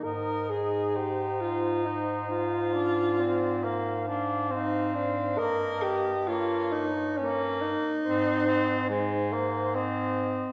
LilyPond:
<<
  \new Staff \with { instrumentName = "Soprano saxophone" } { \time 3/4 \key aes \major \tempo 4 = 68 ees''4 c''4 c''4 | d''4 f''4 f''4 | ees''4 des''4. r8 | c''4 c''4 ees''4 | }
  \new Staff \with { instrumentName = "Alto saxophone" } { \time 3/4 \key aes \major bes'8 aes'8 g'8 f'8 ees'8 f'8~ | f'4. r8 ees'8 d'8 | bes'8 g'8 f'8 ees'8 des'8 ees'8~ | ees'4. r4. | }
  \new Staff \with { instrumentName = "Tenor saxophone" } { \time 3/4 \key aes \major ees'2. | d'8 c'8 bes8 d'8 c'4 | bes4 bes8 r8 bes4 | c'8 c'8 aes8 bes8 c'4 | }
  \new Staff \with { instrumentName = "Bass clarinet" } { \clef bass \time 3/4 \key aes \major aes,2.~ | aes,2. | g,2~ g,8 r8 | aes,2. | }
>>